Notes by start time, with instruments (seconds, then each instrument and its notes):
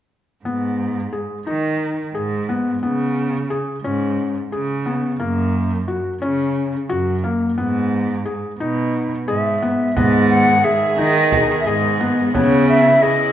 0.45 cello G#2, felt piano B3
1.13 felt piano G#4
1.47 cello D#3, felt piano D#4
2.14 cello G#2, felt piano G#4
2.49 felt piano B3
2.83 cello C#3, felt piano B3
3.50 felt piano G#4
3.84 cello G#2, felt piano C#4
4.52 cello C#3, felt piano G#4
4.86 felt piano B3
5.20 cello F#2, felt piano A#3
5.88 felt piano F#4
6.21 cello C#3, felt piano C#4
6.89 cello F#2, felt piano F#4
7.24 felt piano A#3
7.58 cello G#2, felt piano B3
8.26 felt piano G#4
8.60 cello B2, felt piano D#4
9.27 cello G#2, felt piano G#4, flute E5
9.62 felt piano B3
9.95 cello G#2, string section D#3 B3 G#4, felt piano B3, flute D#5, frame drum
10.29 flute F#5, frame drum
10.64 felt piano G#4, flute E5
10.98 cello D#3, felt piano D#4, flute D#5, frame drum
11.32 frame drum
11.59 flute E5
11.65 cello G#2, felt piano G#4, flute D#5
12.00 felt piano B3
12.34 string section C#3 E4, cello C#3, felt piano B3, flute C#5, frame drum
12.68 flute E5, frame drum
13.01 felt piano G#4, flute D#5